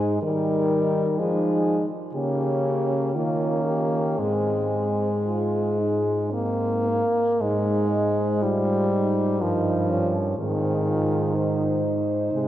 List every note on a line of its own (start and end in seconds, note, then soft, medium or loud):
0.00 0.18 G#2 soft
0.00 0.20 G#3 soft
0.00 0.20 D#4 soft
0.00 0.22 G#4 soft
0.22 1.20 D#3 soft
0.22 1.20 G3 soft
0.22 1.16 D#4 soft
0.22 1.20 A#4 soft
1.18 1.87 F3 soft
1.18 1.87 G#3 soft
1.18 1.86 D#4 soft
1.18 1.87 G#4 soft
2.15 3.17 C#3 soft
2.15 3.11 A#3 soft
2.15 3.11 C#4 soft
2.15 3.17 G4 soft
3.15 4.18 D#3 soft
3.15 4.20 A#3 soft
3.15 4.21 C#4 soft
3.15 3.65 F4 soft
3.65 4.20 G4 soft
4.18 7.03 G#2 soft
4.18 6.32 G#3 soft
4.18 5.15 C4 soft
4.18 6.33 G#4 soft
5.26 5.81 F4 soft
5.79 6.34 D#4 soft
6.32 7.42 A#3 soft
6.32 6.90 C4 soft
6.88 7.41 A#3 soft
7.41 9.42 G#2 soft
7.41 8.44 G#3 soft
7.41 8.43 D#4 soft
7.41 7.88 C5 soft
7.91 9.42 C5 soft
8.42 9.43 G3 soft
8.42 8.94 F4 soft
8.92 9.40 D#4 soft
9.41 10.37 G2 soft
9.41 10.21 F3 soft
9.41 9.92 D#4 soft
9.41 10.37 A#4 soft
9.90 10.37 C#4 soft
10.38 12.29 G#2 soft
10.38 11.81 D#3 soft
10.38 10.90 C4 soft
10.38 11.37 G#4 soft
10.88 11.36 F4 soft
11.35 12.48 D#4 soft
11.35 12.48 C5 soft
12.32 12.48 C3 soft
12.32 12.48 G#3 soft